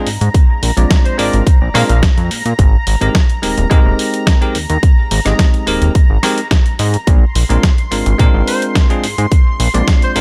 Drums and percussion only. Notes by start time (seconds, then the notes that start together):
0.07 open hi-hat
0.21 closed hi-hat
0.34 kick, closed hi-hat
0.63 open hi-hat
0.77 closed hi-hat
0.90 kick, snare, closed hi-hat
1.05 closed hi-hat
1.19 open hi-hat
1.33 closed hi-hat
1.47 kick, closed hi-hat
1.75 cross-stick, open hi-hat
1.89 closed hi-hat
2.03 kick, snare, closed hi-hat
2.18 closed hi-hat
2.31 open hi-hat
2.46 closed hi-hat
2.59 kick, closed hi-hat
2.87 open hi-hat
3.01 closed hi-hat
3.15 kick, snare, closed hi-hat
3.30 closed hi-hat
3.43 open hi-hat
3.58 closed hi-hat
3.71 kick, closed hi-hat
3.99 open hi-hat
4.14 closed hi-hat
4.27 kick, snare, closed hi-hat
4.42 closed hi-hat
4.55 open hi-hat
4.70 closed hi-hat
4.83 kick, closed hi-hat
5.11 open hi-hat
5.26 cross-stick, closed hi-hat
5.39 kick, snare, closed hi-hat
5.54 closed hi-hat
5.67 open hi-hat
5.82 closed hi-hat
5.95 kick, closed hi-hat
6.23 cross-stick, open hi-hat
6.38 closed hi-hat
6.51 kick, snare, closed hi-hat
6.66 closed hi-hat
6.79 open hi-hat
6.94 closed hi-hat
7.07 kick, closed hi-hat
7.35 open hi-hat
7.50 closed hi-hat
7.63 kick, snare, closed hi-hat
7.78 closed hi-hat
7.92 open hi-hat
8.06 closed hi-hat
8.19 kick, closed hi-hat
8.48 open hi-hat
8.62 closed hi-hat
8.75 kick, snare, closed hi-hat
8.90 closed hi-hat
9.04 open hi-hat
9.18 closed hi-hat
9.32 kick, closed hi-hat
9.60 open hi-hat
9.74 closed hi-hat
9.88 kick, snare, closed hi-hat
10.02 closed hi-hat
10.16 open hi-hat